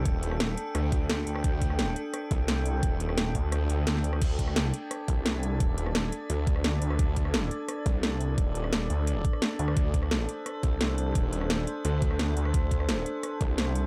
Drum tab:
CC |----------------|----------------|----------------|x---------------|
HH |x-x-x-x-x-x-x-x-|x-x-x-x-x-x-x-x-|x-x-x-x-x-x-x-x-|x-x-x-x-x-x-x-x-|
SD |---ro---r---o--r|---ro---r---o---|---ro---r---oo-r|---ro---r---o---|
BD |o---------o-----|o-o-------o-----|o-----o---------|o-o-------o-----|

CC |----------------|----------------|----------------|----------------|
HH |x-x-x-x-x-x-x-x-|x-x-x-x-x-x-x-x-|x-x-x-x-x-x-x-x-|x-x-x-x-x-x-x-x-|
SD |---ro------ro--r|---ro---r---o---|---ro------ro--r|---ro---r---o---|
BD |o---------o-----|o-o-------o-----|o---------o-----|o-o-------o-----|

CC |----------------|----------------|
HH |x-x-x-x-x-x-x-x-|x-x-x-x-x-x-x-x-|
SD |---ro------ro--r|---ro---r---o---|
BD |o---------o-----|o-o-------o-----|